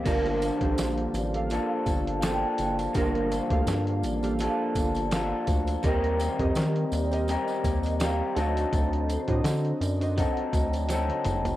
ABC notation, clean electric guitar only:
X:1
M:4/4
L:1/8
Q:"Swing 16ths" 1/4=83
K:Gm
V:1 name="Clean electric guitar"
[G,,D,F,B,D]4 [F,B,DA]2 [F,B,DA]2 | [G,,D,F,B,D]4 [F,B,DA]2 [F,B,DA]2 | [E,G,CGB]4 [G,CGB]2 [G,CGB] [D,^F,CEA]- | [D,^F,CEA]4 [F,CEA]2 [F,CEA]2 |]